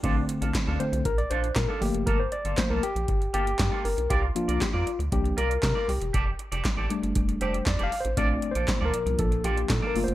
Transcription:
<<
  \new Staff \with { instrumentName = "Clean electric guitar" } { \time 4/4 \key bes \major \tempo 4 = 118 <d' f' a'>16 r8 <d' f' a'>16 r16 <d' f' a'>16 r4 <d' f' a'>16 r8 <d' f' a'>16 r8 | <bes f' a'>16 r8 <bes f' a'>16 r16 <bes f' a'>16 r4 <bes f' a'>16 r8 <bes f' a'>16 r8 | <f' bes' d''>16 r8 <f' bes' d''>16 r16 <f' bes' d''>16 r4 <f' bes' d''>16 r8 <f' bes' d''>16 r8 | <g' a' d''>16 r8 <g' a' d''>16 r16 <g' a' d''>16 r4 <g' a' d''>16 r8 <g' a' d''>16 r8 |
<f' a' d''>16 r8 <f' a' d''>16 r16 <f' a' d''>16 r4 <f' a' d''>16 r8 <f' a' d''>16 r8 | }
  \new Staff \with { instrumentName = "Tine electric piano" } { \time 4/4 \key bes \major r4. c''8 bes'16 d''16 c''8 bes'16 a'16 g'8 | bes'16 c''16 d''8 c''16 bes'16 g'4 g'4 bes'8 | g'8 f'8 g'16 f'8 r16 g'8 bes'8 bes'8 g'8 | r2 r8 c''8 \tuplet 3/2 { d''8 f''8 c''8 } |
\tuplet 3/2 { d''4 c''8~ c''8 bes'4 } a'8 g'8 \tuplet 3/2 { a'8 bes'8 c''8 } | }
  \new Staff \with { instrumentName = "Tine electric piano" } { \time 4/4 \key bes \major <d a c'>4. <d a c'>8 r4. <f a bes>8 | r4 <f a bes>8 r2 r8 | r8 <f bes d'>8 r4 <f bes d'>8 r4. | r4. <g a d'>4. r4 |
<a c' d'>8 r2. <a bes f'>8 | }
  \new Staff \with { instrumentName = "String machine" } { \time 4/4 \key bes \major r1 | r1 | r1 | r1 |
<bes, f d'>2.~ <bes, f d'>8 <g f' g' a'>8 | }
  \new Staff \with { instrumentName = "Analog synth bass" } { \clef bass \time 4/4 \key bes \major bes,,8 r16 bes,,16 r16 d,16 r16 c,16 bes,,8 bes,,8 bes,16 r16 g,,16 fis,,16 | g,,8 r16 g,,16 r16 c,16 r16 bes,,16 g,,8 g,,8 g,16 r16 g,,16 b,,16 | c,8 r16 c,16 r16 f,16 r16 d,16 c,8 c,8 c16 r16 c,16 e,,16 | f,,8 r16 f,,16 r16 a,,16 r16 g,,16 f,,8 f,,8 f,16 f,,16 r16 a,,16 |
bes,,8 r16 bes,,16 r16 d,16 r16 c,16 bes,,8 bes,,8 bes,16 r16 g,,16 fis,,16 | }
  \new DrumStaff \with { instrumentName = "Drums" } \drummode { \time 4/4 <hh bd>8 hh16 hh16 <hc hh bd sn>8 hh16 hh16 <hh bd>16 hh16 hh16 hh16 <hc hh bd sn>8 hho16 hh16 | <hh bd>8 hh16 hh16 <hc hh bd sn>8 hh16 hh16 <hh bd>16 hh16 hh16 hh16 <hc hh bd sn>8 hho16 hh16 | <hh bd>8 hh16 hh16 <hc hh bd sn>8 hh16 hh16 <hh bd>16 hh16 hh16 hh16 <hc hh bd sn>8 hho16 hh16 | <hh bd>8 hh16 hh16 <hc hh bd sn>8 hh16 hh16 <hh bd>16 hh16 hh16 hh16 <hc hh bd sn>16 hh16 hho16 hh16 |
<hh bd>8 hh16 hh16 <hc hh bd sn>8 hh16 hh16 <hh bd>16 hh16 hh16 hh16 <hc hh bd sn>8 hho16 hh16 | }
>>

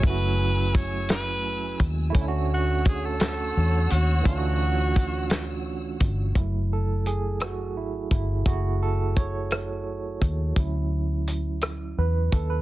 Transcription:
<<
  \new Staff \with { instrumentName = "String section" } { \time 6/8 \key fis \minor \tempo 4. = 57 <a gis'' e'''>2. | <cis'' fis'' e'''>2.~ | <cis'' fis'' e'''>2. | r2. |
r2. | r2. | }
  \new Staff \with { instrumentName = "Tenor saxophone" } { \time 6/8 \key fis \minor b'4 cis''8 b'4 r8 | r8 fis'8 gis'16 a'4~ a'16 fis'8 | fis'2 r4 | r2. |
r2. | r2. | }
  \new Staff \with { instrumentName = "Tine electric piano" } { \time 6/8 \key fis \minor << { <fis a cis' e' fis'>2. | <a cis' d' e' fis'>2. | <e a cis' d' eis' fis'>2. | r8 a'8 gis'8 fis'8 e'8 e'8 |
fis'8 a'8 cis''8 r4. | r2 b'8 a'16 b'16 | } \\ { r2. | r2. | r2. | <fis a e'>4. r4. |
<a e' gis'>2. | <fis cis' e'>2. | } >> }
  \new Staff \with { instrumentName = "Fingered electric bass" } { \clef bass \time 6/8 \key fis \minor fis,,2~ fis,,8 dis,8 | d,2 e,8 dis,8 | d,2~ d,8 g,,8 | fis,,2 gis,,8 g,,8 |
fis,,2~ fis,,8 dis,8 | d,2 e,8 dis,8 | }
  \new DrumStaff \with { instrumentName = "Drums" } \drummode { \time 6/8 <hh bd>4 <hh bd>8 <hh sn>4 <hh bd>8 | <hh bd>4 <hh bd>8 <hh sn>4 hh8 | <hh bd>4 <hh bd>8 <hh sn>4 <hh bd>8 | <hh bd>4 hh8 <hh ss>4 <hh bd>8 |
<hh bd>4 <hh bd>8 <hh ss>4 <hh bd>8 | <hh bd>4 hh8 <hh ss>4 <hh bd>8 | }
>>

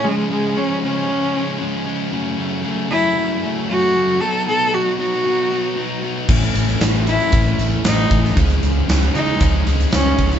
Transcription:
<<
  \new Staff \with { instrumentName = "Cello" } { \time 4/4 \key cis \minor \tempo 4 = 115 gis8 gis8 cis'8 cis'2 r8 | r4. e'4 r8 fis'4 | a'8 a'8 fis'8 fis'2 r8 | r4. e'4 r8 dis'4 |
r4. dis'4 r8 cis'4 | }
  \new Staff \with { instrumentName = "Distorted electric guitar" } { \clef bass \time 4/4 \key cis \minor <cis eis gis cis'>8 <eis gis cis'>8 <cis eis gis cis'>8 <cis eis gis cis'>8 <cis eis gis cis'>8 <eis gis cis'>8 <cis eis gis cis'>8 <eis gis cis'>8 | <fis, cis fis a cis'>8 <fis a cis'>8 <cis fis a cis'>8 <fis, cis fis a cis'>8 <cis fis a cis'>8 <fis a cis'>8 <fis, cis fis a cis'>8 <fis a cis'>8 | <b, fis b dis'>8 <fis b dis'>8 <b, fis b dis'>8 <b, fis b dis'>8 <b, fis b dis'>8 <fis b dis'>8 <b, fis b dis'>8 <fis b dis'>8 | <a, e a cis' e'>8 <a cis' e'>8 <e a cis' e'>8 <a, e a cis' e'>8 <e a cis' e'>8 <a cis' e'>8 <a, e a cis' e'>8 <a cis' e'>8 |
<cis eis gis cis'>8 <eis gis cis'>8 <cis eis gis cis'>8 <cis eis gis cis'>8 <cis eis gis cis'>8 <eis gis cis'>8 <cis eis gis cis'>8 <eis gis cis'>8 | }
  \new Staff \with { instrumentName = "Picked electric bass" } { \clef bass \time 4/4 \key cis \minor r1 | r1 | r1 | a,,8 a,,8 a,,4 a,,8 a,,8 a,,8 a,,8 |
cis,8 cis,8 cis,8 cis8 cis,8 cis,8 cis,8 cis,8 | }
  \new DrumStaff \with { instrumentName = "Drums" } \drummode { \time 4/4 r4 r4 r4 r4 | r4 r4 r4 r4 | r4 r4 r4 r4 | <cymc bd>16 hh16 hh16 sn16 <hh sn>16 hh16 hh16 hh16 <hh bd>16 hh16 hh8 <hh sn>16 hh16 <hh bd>16 sn16 |
<hh bd>16 hh16 hh8 <hh sn>16 hh16 hh8 <hh bd>8 hh16 hh16 <hh sn>8 <hh bd>16 hh16 | }
>>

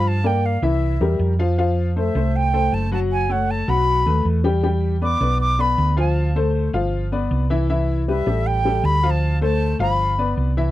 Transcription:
<<
  \new Staff \with { instrumentName = "Flute" } { \time 4/4 \key g \mixolydian \tempo 4 = 157 a''8 g''8 f''8 e''4. r4 | r4 e''4 g''4 a''8 a''8 | aes''8 fis''8 a''8 b''4. r4 | r4 d'''4 d'''8 b''4 a''8~ |
a''4 r2. | r4 e''4 g''4 \tuplet 3/2 { b''4 a''8~ } | a''8 a''4 b''4. r4 | }
  \new Staff \with { instrumentName = "Upright piano" } { \time 4/4 \key g \mixolydian <f f' f''>8 <bes bes' d''>4 <e e' e''>4 <g g' bes'>4 <f f' f''>8 | <f f' f''>4 <a a' c''>8 <a a' c''>4 <a a' c''>4 <fis fis' fis''>8~ | <fis fis' fis''>8 <a a' cis''>4 <fis fis' fis''>4 <a a' b'>4 <g g' g''>8 | <g g' g''>4 <b b' d''>8 <b b' d''>4 <b b' d''>4 <f f' f''>8~ |
<f f' f''>8 <a a' c''>4 <f f' f''>4 <b b' d''>4 <e e' e''>8 | <e e' e''>4 <g g' b'>8 <g g' a'>4 <g g' a'>4 <f f' f''>8~ | <f f' f''>8 <a a' c''>4 <f f' f''>4 <b b' d''>4 <e e' e''>8 | }
  \new Staff \with { instrumentName = "Fingered electric bass" } { \clef bass \time 4/4 \key g \mixolydian g,4. c,4 e,8 f,4~ | f,4. c,4. fis,,4~ | fis,,4. b,,4 dis,8 e,4~ | e,4. b,,4. d,4~ |
d,4. g,,4. c,4~ | c,4. a,,4. d,4~ | d,4. g,,4. c,4 | }
>>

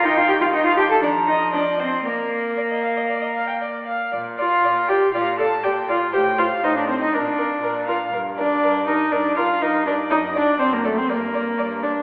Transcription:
<<
  \new Staff \with { instrumentName = "Violin" } { \time 4/4 \key bes \major \tempo 4 = 120 ees''16 f''16 g''16 f''16 ees''16 f''16 g''16 a''16 d''8 ees''8 d''8 c''8 | bes'2.~ bes'8 r8 | r8 f''4 g''8 f''8 a''8 g''8 f''8 | g''8 f''8 ees''16 d''16 c''16 ees''16 d''4. f''8 |
r8 d''4 ees''8 d''8 f''8 ees''8 d''8 | ees''8 d''8 c''16 bes'16 a'16 c''16 bes'4. d''8 | }
  \new Staff \with { instrumentName = "Violin" } { \time 4/4 \key bes \major g''4 g''8 a''8 bes''4 ees''4 | d''4 d''16 ees''16 f''16 ees''16 d''16 ees''16 f''16 g''16 d''8 f''8 | d''8 d''8 d''8 d''8 d''8 d''8 d''8 d''8 | c''8 c''8 c''8 c''8 bes'8 bes'8 bes'8 bes'8 |
bes'8 bes'8 bes'8 bes'8 bes'8 bes'8 bes'8 bes'8 | d''8 d''8 d''8 d''8 d''8 d''8 d''8 d''8 | }
  \new Staff \with { instrumentName = "Viola" } { \time 4/4 \key bes \major ees2 f2 | bes2.~ bes8 r8 | r8 f'4 g'8 f'8 a'8 g'8 f'8 | g'8 f'8 ees'16 d'16 c'16 ees'16 d'4. f'8 |
r8 d'4 ees'8 d'8 f'8 ees'8 d'8 | ees'8 d'8 c'16 bes16 a16 c'16 bes4. d'8 | }
  \new Staff \with { instrumentName = "Cello" } { \clef bass \time 4/4 \key bes \major ees'16 f'16 g'16 f'16 ees'16 f'16 g'16 a'16 d'8 ees'8 d'8 c'8 | bes2.~ bes8 r8 | bes,4 bes,4 bes,4 bes,4 | a,4 a,4 bes,4 bes,4 |
g,4 g,4 g,4 g,4 | fis,4 fis,4 g,4 g,4 | }
>>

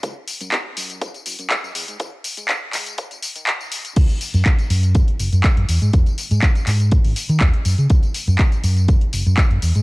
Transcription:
<<
  \new Staff \with { instrumentName = "Fingered electric bass" } { \clef bass \time 4/4 \key gis \phrygian \tempo 4 = 122 cis,16 r8 fis,16 r8 fis,8 r8 fis,,16 fis,16 r16 fis,16 e,16 gis,16 | e,16 r8 gis,16 r8 gis,8 r16 gis,,16 r16 dis16 r16 dis,16 gis,,16 r16 | cis,16 r8 fis,16 r8 fis,8 r8 fis,,16 fis,16 r16 fis,16 e,16 gis,16 | e,16 r8 gis,16 r8 gis,8 r16 gis,,16 r16 dis16 dis,16 r16 fis,16 cis16 |
cis,16 r8 fis,16 r8 fis,8 r8 fis,,16 fis,16 r16 fis,16 e,16 gis,16 | }
  \new DrumStaff \with { instrumentName = "Drums" } \drummode { \time 4/4 <hh bd tamb>8 <hho tamb>16 <hh tamb>16 <hc hh bd tamb>8 <hho tamb>16 <hh tamb>16 <hh bd tamb>16 <hh tamb>16 <hho tamb>16 <hh tamb>16 <hc hh bd tamb>16 tamb16 <hho tamb>16 <hh tamb>16 | <hh bd tamb>8 <hho tamb>16 <hh tamb>16 <hc hh bd tamb>8 <hc hho tamb>16 <hh tamb>16 <hh bd tamb>16 <hh tamb>16 <hho tamb>16 <hh tamb>16 <hc hh bd tamb>16 tamb16 <hho tamb>16 <hh tamb>16 | <cymc hh bd tamb>16 <hh tamb>16 <hho tamb>16 <hh tamb>16 <hc hh bd tamb>16 <hh tamb>16 <hho tamb>16 <hh tamb>16 <hh bd tamb>16 hh16 <hho tamb>16 <hh tamb>16 <hc hh bd tamb>16 hh16 <hho tamb>16 <hh tamb>16 | <hh bd tamb>16 <hh tamb>16 <hho tamb>16 <hh tamb>16 <hc hh bd tamb>16 <hh tamb>16 <hc hho tamb>16 <hh tamb>16 <hh bd tamb>16 hho16 <hho tamb>16 <hh tamb>16 <hc hh bd tamb>16 hh16 <hho tamb>16 <hh tamb>16 |
<hh bd tamb>16 <hh tamb>16 <hho tamb>16 <hh tamb>16 <hc hh bd tamb>16 <hh tamb>16 <hho tamb>16 <hh tamb>16 <hh bd tamb>16 hh16 <hho tamb>16 <hh tamb>16 <hc hh bd tamb>16 hh16 <hho tamb>16 <hh tamb>16 | }
>>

